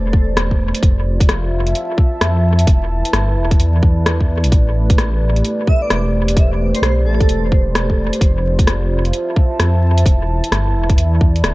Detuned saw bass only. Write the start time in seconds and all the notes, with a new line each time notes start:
Already playing: E1
0.83 F1
1.52 F1
2.21 F2
2.67 E1
3.13 G1
3.36 E1
3.60 E2
4.44 B1
4.52 A1
5.21 A1
5.91 E1
6.82 B1
7.06 A1
7.28 E1
8.21 F1
8.90 F1
9.60 F2
10.06 E1
10.52 G1
10.75 E1
10.97 E2
11.21 E2
11.43 D1